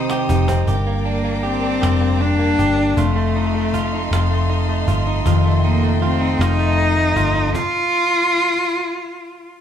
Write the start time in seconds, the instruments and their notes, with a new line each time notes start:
Already playing: fingered electric bass A#1, steel-string acoustic guitar C3 D#3 C4 D#4 G4, clean electric guitar C3 C4 D#4 G4, string section C5 G5 D#6
0.09 clean electric guitar G4, cajon slap
0.29 fingered electric bass F1, steel-string acoustic guitar C4 D#4 G4, clean electric guitar D#4, cajon bass
0.48 clean electric guitar C4, cajon bass
0.67 fingered electric bass G1, clean electric guitar G2 G4, string section A#4 D5 G5 D6, cajon bass
0.87 clean electric guitar A#3
1.05 cello A#3, clean electric guitar D4, cajon slap
1.24 clean electric guitar A#3
1.43 cello C4, clean electric guitar G4, cajon slap
1.62 clean electric guitar D4
1.81 fingered electric bass F1, clean electric guitar G2 G4, cajon slap
2.01 clean electric guitar A#3
2.20 clean electric guitar D4, cello D4, cajon slap
2.39 clean electric guitar A#3
2.59 fingered electric bass G1, clean electric guitar G4, cajon bass
2.78 clean electric guitar D4
2.97 fingered electric bass F1, clean electric guitar F2 F4, cello A3, string section A4 D#5 F5 C6, cajon bass
3.16 clean electric guitar A3
3.36 clean electric guitar D#4, cajon slap
3.55 clean electric guitar A3
3.74 clean electric guitar F4, cajon bass
3.93 clean electric guitar D#4
4.11 fingered electric bass F1, clean electric guitar F2 F4, cajon slap
4.31 clean electric guitar A3
4.50 clean electric guitar D#4, cajon slap
4.69 clean electric guitar A3
4.88 fingered electric bass G1, clean electric guitar F4, cajon bass
5.07 clean electric guitar D#4
5.25 fingered electric bass F1, steel-string acoustic guitar F2 C3 D#3 C4 F4, clean electric guitar F2 F4, string section G5, cajon bass
5.45 clean electric guitar A3
5.64 cello A#3, clean electric guitar D#4, cajon slap
5.83 clean electric guitar A3
6.01 steel-string acoustic guitar D#3 A3 C4 F4, cello C4, clean electric guitar F4, cajon slap
6.21 clean electric guitar D#4
6.39 fingered electric bass F1, clean electric guitar F2 F4, steel-string acoustic guitar F2 C3 D#3 A3 C4 F4, cello D#4, cajon slap
6.59 clean electric guitar A3
6.78 clean electric guitar D#4, cajon slap
6.97 clean electric guitar A3
7.16 fingered electric bass G1, steel-string acoustic guitar D#3 A3 C4 F4, clean electric guitar F4, cajon bass
7.36 clean electric guitar D#4
7.54 cello F4, cajon bass, cajon slap